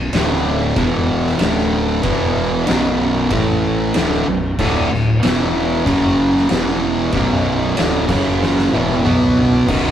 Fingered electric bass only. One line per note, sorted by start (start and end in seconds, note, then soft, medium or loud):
0.00 0.11 B0 medium
0.12 0.72 D1 loud
0.77 1.37 E1 loud
1.40 2.00 D1 medium
2.05 2.64 E1 medium
2.69 3.28 B0 loud
3.31 3.91 A1 loud
3.96 4.25 D1 medium
4.27 4.57 B0 medium
4.60 4.89 D1 loud
4.92 5.21 D1 medium
5.24 5.83 E1 loud
5.86 6.46 F#1 loud
6.51 7.10 E1 medium
7.13 7.73 B0 loud
7.78 8.07 D1 medium
8.09 8.69 F#1 medium
8.74 9.03 E1 loud
9.05 9.64 B1 medium
9.68 9.91 B0 loud